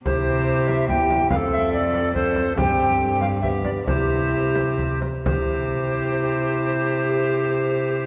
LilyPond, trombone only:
\new Staff \with { instrumentName = "Trombone" } { \time 3/4 \key c \major \tempo 4 = 134 e'2 e'4 | c'2 c'4 | c'2 b4 | e'2~ e'8 r8 |
e'2.~ | e'2. | }